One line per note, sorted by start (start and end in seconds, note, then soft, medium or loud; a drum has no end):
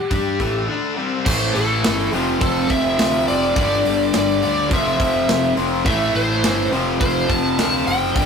0.00 0.64 G4 medium
0.11 0.38 G2 medium
0.11 0.39 G3 medium
0.11 0.39 D4 medium
0.11 0.39 G4 medium
0.11 kick loud
0.11 open hi-hat medium
0.40 0.67 A1 medium
0.40 0.68 A2 medium
0.40 0.68 E3 medium
0.40 0.68 A3 loud
0.40 kick medium
0.40 open hi-hat soft
0.68 0.96 D3 medium
0.68 0.97 A3 medium
0.68 0.97 D4 loud
0.97 1.25 C3 medium
0.97 1.25 G3 medium
0.97 1.25 C4 medium
1.26 1.53 A1 medium
1.26 2.11 A2 medium
1.26 2.11 E3 loud
1.26 2.12 A3 loud
1.26 1.54 C5 loud
1.26 kick loud
1.26 crash loud
1.55 1.83 A1 medium
1.55 2.08 A4 medium
1.55 open hi-hat medium
1.84 2.11 G1 medium
1.84 snare loud
1.84 open hi-hat medium
2.11 2.40 F1 medium
2.11 2.96 F2 medium
2.11 2.97 C3 medium
2.11 2.98 F3 loud
2.11 open hi-hat medium
2.41 2.68 F1 medium
2.41 2.71 A4 medium
2.41 kick loud
2.41 open hi-hat medium
2.70 2.97 F1 loud
2.70 3.27 E5 medium
2.70 kick medium
2.70 open hi-hat medium
2.98 3.27 D2 loud
2.98 3.54 F2 medium
2.98 3.55 C3 medium
2.98 3.55 F3 medium
2.98 snare loud
2.98 open hi-hat medium
3.27 3.55 F1 medium
3.27 4.14 D5 loud
3.27 open hi-hat medium
3.55 3.84 G1 medium
3.55 4.40 G2 medium
3.55 4.41 D3 loud
3.55 4.41 G3 loud
3.55 kick loud
3.55 open hi-hat medium
3.85 4.13 G1 medium
3.85 open hi-hat medium
4.13 4.42 G1 medium
4.13 4.68 D5 medium
4.13 snare loud
4.13 open hi-hat medium
4.42 4.70 D2 medium
4.42 4.70 G2 medium
4.42 4.70 D3 medium
4.42 4.69 G3 medium
4.42 open hi-hat medium
4.71 4.98 F1 medium
4.71 5.56 F2 medium
4.71 5.56 C3 medium
4.71 5.56 F3 loud
4.71 5.55 E5 medium
4.71 kick loud
4.71 open hi-hat medium
5.00 5.27 F1 loud
5.00 kick medium
5.00 open hi-hat medium
5.29 5.56 F1 loud
5.29 snare loud
5.29 open hi-hat medium
5.57 5.84 F1 loud
5.57 5.85 F2 medium
5.57 5.85 C3 medium
5.57 5.84 F3 medium
5.57 open hi-hat medium
5.85 6.13 A1 loud
5.85 6.70 A2 loud
5.85 6.71 E3 loud
5.85 6.71 A3 loud
5.85 6.13 E5 loud
5.85 kick loud
5.85 open hi-hat medium
6.14 6.42 A1 medium
6.14 6.69 C5 medium
6.14 open hi-hat medium
6.43 6.71 G1 medium
6.43 snare loud
6.43 open hi-hat medium
6.71 7.00 F1 medium
6.71 7.56 F2 medium
6.71 7.57 C3 medium
6.71 7.58 F3 medium
6.71 open hi-hat medium
7.00 7.28 F1 medium
7.00 7.30 C5 loud
7.00 kick loud
7.00 open hi-hat medium
7.29 7.57 F1 medium
7.29 7.86 A5 loud
7.29 kick medium
7.29 open hi-hat medium
7.58 7.85 D2 medium
7.58 8.14 F2 medium
7.58 8.15 C3 medium
7.58 8.16 F3 medium
7.58 snare loud
7.58 open hi-hat medium
7.86 8.14 F#1 medium
7.86 8.26 G5 loud
7.86 open hi-hat medium
8.15 8.26 G1 loud
8.15 8.26 G2 loud
8.15 8.26 D3 loud
8.15 8.26 G3 loud
8.15 kick loud
8.15 open hi-hat medium